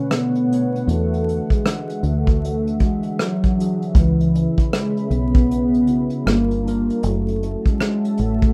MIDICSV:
0, 0, Header, 1, 6, 480
1, 0, Start_track
1, 0, Tempo, 769231
1, 545, Time_signature, 4, 2, 24, 8
1, 5324, End_track
2, 0, Start_track
2, 0, Title_t, "Analog synth pad"
2, 0, Program_c, 0, 89
2, 0, Note_on_c, 0, 50, 80
2, 0, Note_on_c, 0, 71, 72
2, 0, Note_on_c, 0, 73, 68
2, 0, Note_on_c, 0, 78, 84
2, 514, Note_off_c, 0, 73, 0
2, 526, Note_off_c, 0, 71, 0
2, 537, Note_on_c, 0, 66, 65
2, 539, Note_on_c, 0, 76, 71
2, 2439, Note_off_c, 0, 50, 0
2, 2440, Note_off_c, 0, 78, 0
2, 2442, Note_off_c, 0, 66, 0
2, 2454, Note_on_c, 0, 61, 75
2, 2455, Note_on_c, 0, 83, 86
2, 2459, Note_on_c, 0, 68, 73
2, 3877, Note_off_c, 0, 76, 0
2, 3885, Note_off_c, 0, 61, 0
2, 3885, Note_off_c, 0, 83, 0
2, 3888, Note_off_c, 0, 68, 0
2, 4381, Note_on_c, 0, 76, 73
2, 4386, Note_on_c, 0, 61, 76
2, 4387, Note_on_c, 0, 81, 86
2, 4388, Note_on_c, 0, 66, 70
2, 5324, Note_off_c, 0, 61, 0
2, 5324, Note_off_c, 0, 66, 0
2, 5324, Note_off_c, 0, 76, 0
2, 5324, Note_off_c, 0, 81, 0
2, 5324, End_track
3, 0, Start_track
3, 0, Title_t, "Tine electric piano"
3, 0, Program_c, 1, 4
3, 0, Control_c, 1, 64, 127
3, 0, Note_on_c, 1, 47, 69
3, 0, Note_on_c, 1, 50, 54
3, 0, Note_on_c, 1, 57, 62
3, 0, Note_on_c, 1, 73, 71
3, 185, Note_off_c, 1, 47, 0
3, 190, Note_off_c, 1, 57, 0
3, 196, Note_off_c, 1, 50, 0
3, 201, Note_off_c, 1, 73, 0
3, 303, Note_on_c, 1, 47, 70
3, 314, Note_on_c, 1, 57, 68
3, 323, Note_on_c, 1, 62, 69
3, 335, Note_on_c, 1, 73, 81
3, 493, Note_off_c, 1, 47, 0
3, 498, Note_off_c, 1, 57, 0
3, 503, Note_off_c, 1, 62, 0
3, 509, Note_off_c, 1, 73, 0
3, 543, Note_on_c, 1, 52, 66
3, 554, Control_c, 1, 64, 0
3, 554, Note_on_c, 1, 62, 64
3, 561, Note_on_c, 1, 66, 74
3, 574, Note_on_c, 1, 71, 74
3, 660, Control_c, 1, 64, 127
3, 1235, Note_off_c, 1, 52, 0
3, 1240, Note_off_c, 1, 62, 0
3, 1244, Note_off_c, 1, 66, 0
3, 1250, Note_off_c, 1, 71, 0
3, 1736, Note_on_c, 1, 52, 66
3, 1746, Note_on_c, 1, 62, 60
3, 1757, Note_on_c, 1, 66, 64
3, 1766, Note_on_c, 1, 68, 73
3, 2108, Note_off_c, 1, 52, 0
3, 2113, Note_off_c, 1, 62, 0
3, 2118, Note_off_c, 1, 66, 0
3, 2123, Note_off_c, 1, 68, 0
3, 2222, Note_on_c, 1, 52, 73
3, 2233, Note_on_c, 1, 62, 64
3, 2244, Note_on_c, 1, 66, 71
3, 2254, Note_on_c, 1, 68, 77
3, 2412, Note_off_c, 1, 52, 0
3, 2418, Note_off_c, 1, 62, 0
3, 2423, Note_off_c, 1, 66, 0
3, 2429, Note_off_c, 1, 68, 0
3, 2467, Note_on_c, 1, 49, 75
3, 2472, Control_c, 1, 64, 0
3, 2477, Note_on_c, 1, 61, 65
3, 2489, Note_on_c, 1, 64, 61
3, 2497, Note_on_c, 1, 71, 77
3, 2568, Control_c, 1, 64, 127
3, 3157, Note_off_c, 1, 49, 0
3, 3162, Note_off_c, 1, 61, 0
3, 3168, Note_off_c, 1, 64, 0
3, 3172, Note_off_c, 1, 71, 0
3, 3653, Note_on_c, 1, 49, 64
3, 3662, Note_on_c, 1, 61, 58
3, 3672, Note_on_c, 1, 64, 57
3, 3684, Note_on_c, 1, 66, 68
3, 3891, Note_on_c, 1, 55, 75
3, 3899, Note_off_c, 1, 49, 0
3, 3900, Note_on_c, 1, 62, 66
3, 3903, Note_off_c, 1, 61, 0
3, 3908, Note_off_c, 1, 64, 0
3, 3912, Control_c, 1, 64, 0
3, 3912, Note_on_c, 1, 65, 71
3, 3915, Note_off_c, 1, 66, 0
3, 3921, Note_on_c, 1, 70, 75
3, 4018, Control_c, 1, 64, 127
3, 4103, Note_off_c, 1, 55, 0
3, 4108, Note_off_c, 1, 62, 0
3, 4113, Note_off_c, 1, 65, 0
3, 4118, Note_off_c, 1, 70, 0
3, 4141, Note_on_c, 1, 55, 71
3, 4150, Note_on_c, 1, 62, 73
3, 4162, Note_on_c, 1, 65, 64
3, 4171, Note_on_c, 1, 70, 88
3, 4332, Note_off_c, 1, 55, 0
3, 4337, Note_off_c, 1, 62, 0
3, 4342, Note_off_c, 1, 65, 0
3, 4347, Note_off_c, 1, 70, 0
3, 4390, Note_on_c, 1, 54, 69
3, 4392, Control_c, 1, 64, 0
3, 4400, Note_on_c, 1, 61, 64
3, 4408, Note_on_c, 1, 64, 62
3, 4420, Note_on_c, 1, 66, 84
3, 4518, Control_c, 1, 64, 127
3, 5078, Note_off_c, 1, 54, 0
3, 5083, Note_off_c, 1, 61, 0
3, 5087, Note_off_c, 1, 64, 0
3, 5093, Note_off_c, 1, 66, 0
3, 5324, End_track
4, 0, Start_track
4, 0, Title_t, "Soft synth lead"
4, 0, Program_c, 2, 80
4, 0, Note_on_c, 2, 61, 123
4, 74, Note_on_c, 2, 59, 106
4, 84, Note_off_c, 2, 61, 0
4, 555, Note_on_c, 2, 57, 118
4, 564, Note_off_c, 2, 59, 0
4, 949, Note_on_c, 2, 56, 100
4, 958, Note_off_c, 2, 57, 0
4, 1279, Note_on_c, 2, 57, 109
4, 1288, Note_off_c, 2, 56, 0
4, 1756, Note_on_c, 2, 56, 88
4, 1765, Note_off_c, 2, 57, 0
4, 1990, Note_off_c, 2, 56, 0
4, 1994, Note_on_c, 2, 54, 107
4, 2483, Note_on_c, 2, 52, 95
4, 2492, Note_off_c, 2, 54, 0
4, 2964, Note_on_c, 2, 56, 99
4, 2974, Note_off_c, 2, 52, 0
4, 3168, Note_on_c, 2, 58, 80
4, 3177, Note_off_c, 2, 56, 0
4, 3196, Note_on_c, 2, 59, 118
4, 3206, Note_off_c, 2, 58, 0
4, 3911, Note_off_c, 2, 59, 0
4, 3920, Note_on_c, 2, 58, 104
4, 4399, Note_on_c, 2, 57, 107
4, 4409, Note_off_c, 2, 58, 0
4, 4796, Note_on_c, 2, 56, 105
4, 4805, Note_off_c, 2, 57, 0
4, 5123, Note_on_c, 2, 57, 108
4, 5133, Note_off_c, 2, 56, 0
4, 5324, Note_off_c, 2, 57, 0
4, 5324, End_track
5, 0, Start_track
5, 0, Title_t, "Fingered electric bass"
5, 0, Program_c, 3, 33
5, 545, Note_on_c, 3, 40, 98
5, 868, Note_off_c, 3, 40, 0
5, 1266, Note_on_c, 3, 38, 88
5, 1874, Note_off_c, 3, 38, 0
5, 2464, Note_on_c, 3, 37, 88
5, 2788, Note_off_c, 3, 37, 0
5, 3184, Note_on_c, 3, 35, 85
5, 3792, Note_off_c, 3, 35, 0
5, 3908, Note_on_c, 3, 31, 88
5, 4301, Note_off_c, 3, 31, 0
5, 4391, Note_on_c, 3, 30, 99
5, 4712, Note_off_c, 3, 30, 0
5, 5112, Note_on_c, 3, 33, 84
5, 5324, Note_off_c, 3, 33, 0
5, 5324, End_track
6, 0, Start_track
6, 0, Title_t, "Drums"
6, 69, Note_on_c, 9, 37, 106
6, 74, Note_on_c, 9, 42, 72
6, 131, Note_off_c, 9, 37, 0
6, 136, Note_off_c, 9, 42, 0
6, 220, Note_on_c, 9, 42, 39
6, 282, Note_off_c, 9, 42, 0
6, 326, Note_on_c, 9, 42, 69
6, 389, Note_off_c, 9, 42, 0
6, 471, Note_on_c, 9, 42, 47
6, 533, Note_off_c, 9, 42, 0
6, 553, Note_on_c, 9, 42, 73
6, 615, Note_off_c, 9, 42, 0
6, 709, Note_on_c, 9, 42, 50
6, 771, Note_off_c, 9, 42, 0
6, 803, Note_on_c, 9, 42, 62
6, 865, Note_off_c, 9, 42, 0
6, 938, Note_on_c, 9, 36, 80
6, 947, Note_on_c, 9, 42, 48
6, 1000, Note_off_c, 9, 36, 0
6, 1009, Note_off_c, 9, 42, 0
6, 1034, Note_on_c, 9, 37, 113
6, 1041, Note_on_c, 9, 42, 87
6, 1096, Note_off_c, 9, 37, 0
6, 1103, Note_off_c, 9, 42, 0
6, 1183, Note_on_c, 9, 42, 46
6, 1245, Note_off_c, 9, 42, 0
6, 1269, Note_on_c, 9, 42, 59
6, 1331, Note_off_c, 9, 42, 0
6, 1418, Note_on_c, 9, 36, 90
6, 1423, Note_on_c, 9, 42, 45
6, 1480, Note_off_c, 9, 36, 0
6, 1485, Note_off_c, 9, 42, 0
6, 1526, Note_on_c, 9, 42, 82
6, 1588, Note_off_c, 9, 42, 0
6, 1668, Note_on_c, 9, 42, 46
6, 1730, Note_off_c, 9, 42, 0
6, 1747, Note_on_c, 9, 42, 64
6, 1749, Note_on_c, 9, 36, 84
6, 1809, Note_off_c, 9, 42, 0
6, 1812, Note_off_c, 9, 36, 0
6, 1890, Note_on_c, 9, 42, 48
6, 1952, Note_off_c, 9, 42, 0
6, 1993, Note_on_c, 9, 37, 96
6, 1998, Note_on_c, 9, 42, 73
6, 2055, Note_off_c, 9, 37, 0
6, 2060, Note_off_c, 9, 42, 0
6, 2144, Note_on_c, 9, 42, 39
6, 2145, Note_on_c, 9, 36, 76
6, 2207, Note_off_c, 9, 42, 0
6, 2208, Note_off_c, 9, 36, 0
6, 2247, Note_on_c, 9, 42, 75
6, 2310, Note_off_c, 9, 42, 0
6, 2385, Note_on_c, 9, 42, 49
6, 2448, Note_off_c, 9, 42, 0
6, 2464, Note_on_c, 9, 36, 102
6, 2469, Note_on_c, 9, 42, 73
6, 2527, Note_off_c, 9, 36, 0
6, 2532, Note_off_c, 9, 42, 0
6, 2624, Note_on_c, 9, 42, 54
6, 2686, Note_off_c, 9, 42, 0
6, 2715, Note_on_c, 9, 42, 68
6, 2778, Note_off_c, 9, 42, 0
6, 2857, Note_on_c, 9, 36, 80
6, 2866, Note_on_c, 9, 42, 51
6, 2919, Note_off_c, 9, 36, 0
6, 2928, Note_off_c, 9, 42, 0
6, 2953, Note_on_c, 9, 37, 110
6, 2960, Note_on_c, 9, 42, 79
6, 3015, Note_off_c, 9, 37, 0
6, 3022, Note_off_c, 9, 42, 0
6, 3102, Note_on_c, 9, 42, 45
6, 3164, Note_off_c, 9, 42, 0
6, 3187, Note_on_c, 9, 42, 63
6, 3249, Note_off_c, 9, 42, 0
6, 3337, Note_on_c, 9, 36, 103
6, 3340, Note_on_c, 9, 42, 41
6, 3399, Note_off_c, 9, 36, 0
6, 3403, Note_off_c, 9, 42, 0
6, 3439, Note_on_c, 9, 42, 82
6, 3502, Note_off_c, 9, 42, 0
6, 3583, Note_on_c, 9, 42, 42
6, 3646, Note_off_c, 9, 42, 0
6, 3664, Note_on_c, 9, 42, 63
6, 3726, Note_off_c, 9, 42, 0
6, 3806, Note_on_c, 9, 42, 46
6, 3869, Note_off_c, 9, 42, 0
6, 3912, Note_on_c, 9, 37, 103
6, 3917, Note_on_c, 9, 42, 71
6, 3975, Note_off_c, 9, 37, 0
6, 3980, Note_off_c, 9, 42, 0
6, 4061, Note_on_c, 9, 42, 38
6, 4124, Note_off_c, 9, 42, 0
6, 4165, Note_on_c, 9, 42, 69
6, 4227, Note_off_c, 9, 42, 0
6, 4305, Note_on_c, 9, 42, 44
6, 4367, Note_off_c, 9, 42, 0
6, 4387, Note_on_c, 9, 42, 78
6, 4449, Note_off_c, 9, 42, 0
6, 4544, Note_on_c, 9, 42, 53
6, 4607, Note_off_c, 9, 42, 0
6, 4636, Note_on_c, 9, 42, 64
6, 4698, Note_off_c, 9, 42, 0
6, 4777, Note_on_c, 9, 36, 86
6, 4785, Note_on_c, 9, 42, 50
6, 4839, Note_off_c, 9, 36, 0
6, 4847, Note_off_c, 9, 42, 0
6, 4870, Note_on_c, 9, 37, 102
6, 4877, Note_on_c, 9, 42, 84
6, 4933, Note_off_c, 9, 37, 0
6, 4940, Note_off_c, 9, 42, 0
6, 5021, Note_on_c, 9, 42, 52
6, 5083, Note_off_c, 9, 42, 0
6, 5101, Note_on_c, 9, 42, 62
6, 5164, Note_off_c, 9, 42, 0
6, 5256, Note_on_c, 9, 36, 96
6, 5256, Note_on_c, 9, 42, 43
6, 5318, Note_off_c, 9, 36, 0
6, 5318, Note_off_c, 9, 42, 0
6, 5324, End_track
0, 0, End_of_file